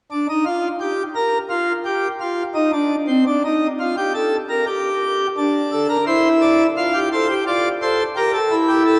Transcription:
pipe organ
0.11 D4
0.29 D#4
0.45 F4
0.81 G4
1.15 A#4
1.50 F4
1.85 G4
2.20 F4
2.55 D#4
2.73 D4
3.08 C4
3.27 D4
3.45 D#4
3.80 F4
3.97 G4
4.14 A4
4.49 A#4
4.67 G4
5.37 D4
5.72 A4
5.89 A#4
6.07 E4 C5
6.42 D5
6.77 F4 F5
6.94 G4
7.13 A4 C5
7.30 G4
7.47 F4 D5
7.82 A4 C5
8.16 G4 A#4
8.34 A4
8.51 E4
8.68 G4
8.86 A4

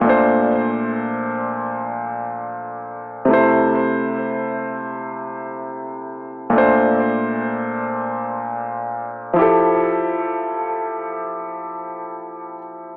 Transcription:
grand piano
0.01 A#2 A3
0.07 D4 C5
3.25 C3 A3
3.31 E4 C5
6.50 A#2 A3
6.55 D4 C5
9.33 F3 E4
9.39 G4 A4

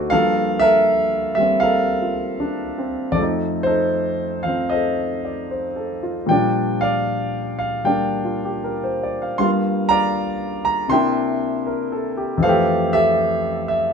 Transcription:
grand piano
Already playing: D2 C3 D3 F#3 A3 D#4 F#4 A4 C5 D5 D#5 F#5
0.10 G2 F3 A#3 A4 A#4 F5
0.60 A4 A#4 E5
1.35 G3 A#3 E5
1.40 C4
1.60 A4 A#4 F5
2.02 F4
2.40 D4
2.78 C4
3.12 F2 F3 A4 D5
3.19 A3 D#4
3.63 D#4 A4 C5
4.43 F3 F5
4.48 C4
4.70 A4 C5 D#5
5.25 D5
5.51 C5
5.76 A4
6.03 F4
6.26 A#2 F3 G3 G5
6.31 D4 D5
6.81 D5 F5
7.59 F5
7.84 G3 A#3 D4 D5 G5
8.25 F4
8.45 G4
8.64 A#4
8.84 C5
9.03 D5
9.22 F5
9.38 G2 G3 A#3 F5 C6
9.44 F4
9.89 D5 F5 A#5
10.65 A#5
10.88 C3 A#3 E5 G5 C6
10.92 D4 E4
11.67 A#4
11.92 A4
12.17 G4
12.38 F2 E3
12.43 A3 A4 C5 F5
12.49 G4
12.93 G4 A4 E5
13.68 E5

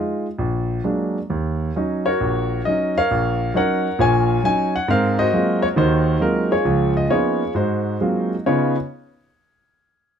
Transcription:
grand piano
Already playing: G#3 D#4 F4
0.39 A#1
0.84 F#3 G#3 A#3 D4
1.30 D#2
1.76 F#3 C#4 D#4
2.06 F#4 A#4 C#5
2.21 A#1
2.65 F#3 C#4 D#4 D#5
2.98 A#4 C#5 F5
3.11 A#1
3.54 F#3 C#4 D#4 A#4 C#5 F#5
3.99 A#1 A#2 C#5 G#5
4.44 F#3 C#4 D#4 G#5
4.76 F#5
4.88 G#2 C4 A#4 C5 F5
5.19 F#4 C5 D#5
5.33 F#3 G#3 A#3 C4 F4
5.62 C#5
5.76 D#2 D#3 D#4 F#4 C5
6.20 F#3 G#3 A#3 C4 F4 A#4
6.51 F4 G#4 C#5
6.65 C#2 F3
6.97 D#5
7.08 F3 A#3 B3 C#4 D#4 F4 G#4 C#5
7.54 G#2 D#4 F#4 C5
8.01 F#3 G#3 A#3 C4 F4
8.46 C#3 B3 D#4 F4 C#5

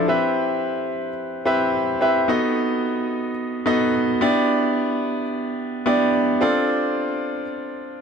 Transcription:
grand piano
Already playing: E4 A4
0.08 C4 E4 G4 B4 E5
1.46 C4 E4 G4 B4 E5
2.01 C4 E4 G4 B4 E5
2.28 B3 D#4 F#4 A4 D#5
3.66 B3 D#4 F#4 A4 D#5
4.21 B3 D4 E4 G4 D5
5.86 B3 D4 E4 G4 D5
6.41 C4 D4 F4 A4 D5

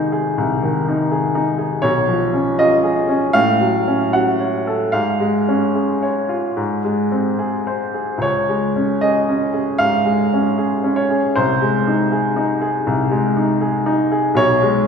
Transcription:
upright piano
Already playing: C2 D#3 D#4 G#4 C5
0.12 G#4
0.38 C2
0.63 D#3
0.88 D#4
1.11 G#4
1.35 D#4
1.58 G#4
1.82 B1 C#5
2.08 F3
2.33 C#4
2.59 F4 D#5
2.84 G#4
3.09 C#4
3.33 A2 F5
3.61 F#3
3.88 C#4
4.13 F#4 F#5
4.40 C#5
4.67 A4
4.92 G#2 F5
5.20 G#3
5.48 C#4
5.75 G#4
6.03 C#5
6.29 F4
6.57 G#2
6.84 G#3
7.12 C4
7.39 G#4
7.67 C5
7.94 G#4
8.18 C#2 C#5
8.49 G#3
8.76 C#4
9.01 G#4 D#5
9.29 C#4
9.53 G#4
9.78 G#2 F5
10.05 G#3
10.33 C#4
10.58 G#4
10.84 C#4
10.96 C#5
11.11 G#4
11.36 C2 C5
11.62 G#3
11.87 D#4
12.12 G#4
12.36 D#4
12.61 G#4
12.87 C2
13.11 G#3
13.37 D#4
13.61 G#4
13.86 D#4
14.12 G#4
14.35 B1 C#5
14.63 G#3

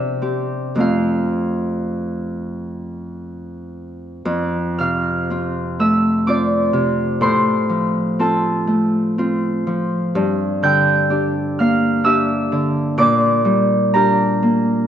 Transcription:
harp
Already playing: C3 E5
0.22 C4 G4
0.75 F2 A3 C4
0.80 F4 F5
4.25 F2
4.78 C3 F5 F6
5.30 C4 F4
5.79 A3 E5 E6
6.27 C4 F4 D5 D6
6.73 C3
7.21 A2 C5 C6
7.70 F3
8.19 C4 F4 A4 A5
8.67 A3
9.18 C4 F4
9.67 F3
10.15 G2
10.63 D3 G5 G6
11.10 D4 G4
11.59 A#3 F5 F6
12.04 D4 G4 E5 E6
12.52 D3
12.98 A#2 D5 D6
13.45 G3
13.94 D4 G4 A#4 A#5
14.43 A#3

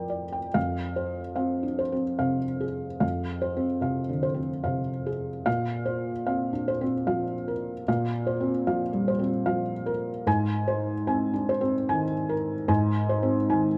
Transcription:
felt piano
Already playing: F2 F3 A#4 D5 G5
0.10 D5
0.32 G5
0.54 F2 F5
0.96 C5
1.36 C4 F5
1.63 D4
1.79 C5
1.92 C4
2.19 C3 F5
2.60 G#4
3.00 F2 F5
3.42 C5
3.57 C4
3.81 C3 F5
4.09 D3
4.23 C5
4.34 C4
4.64 C3 F5
5.06 G#4
5.46 A#2 F5
5.86 C5
6.27 C4 F5
6.53 D4
6.68 C5
6.81 C4
7.07 F3 F5
7.48 A#4
7.88 A#2 F5
8.27 C5
8.41 C4
8.67 F3 F5
8.93 G3
9.08 C5
9.19 C4
9.46 F3 F5
9.86 A#4
10.27 G#2 G#5
10.68 C5
11.07 C4 G#5
11.34 D4
11.49 C5
11.61 C4
11.89 D#3 G#5
12.29 A#4
12.68 G#2 G#5
13.09 C5
13.23 C4
13.50 D#3 G#5

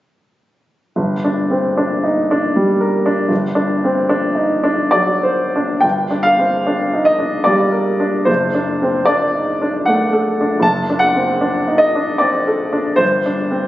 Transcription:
upright piano
0.96 G1
1.24 D4
1.51 C4
1.77 D4
2.03 D#4
2.31 D4
2.56 G3
2.80 A#4
3.06 D4
3.29 G1
3.55 D4
3.84 C4
4.09 D4
4.35 D#4
4.64 D4
4.91 F#3 D5
5.23 C5
5.56 D4
5.81 G1 G5
6.11 D4
6.23 F5
6.39 C4
6.67 D4
6.94 D#4
7.05 D#5
7.19 D4
7.44 G3 D5
7.72 A#4
8.00 D4
8.25 F#1 C5
8.54 D4
8.82 C4
9.05 D4 D5
9.35 D#4
9.61 D4
9.86 A3 F#5
10.12 A4
10.41 D4
10.60 F#1 A5
10.90 D4
10.99 F#5
11.15 C4
11.41 D4
11.67 D#4
11.78 D#5
11.95 D4
12.18 C4 D5
12.47 A4
12.73 D4
12.96 G1 C5
13.26 D4
13.51 C4

